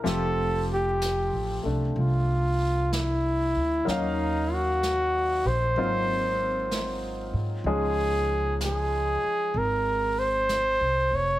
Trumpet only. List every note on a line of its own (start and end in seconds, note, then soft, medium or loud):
0.08 0.67 A4 medium
0.73 1.63 G4 medium
1.99 2.94 F4 medium
2.93 3.90 E4 medium
3.88 4.55 D#4 medium
4.54 5.49 F#4 medium
5.48 7.36 C5 medium
7.70 8.59 G#4 medium
8.64 9.59 G#4 medium
9.58 10.21 A#4 medium
10.19 11.18 C5 medium
11.16 11.39 C#5 medium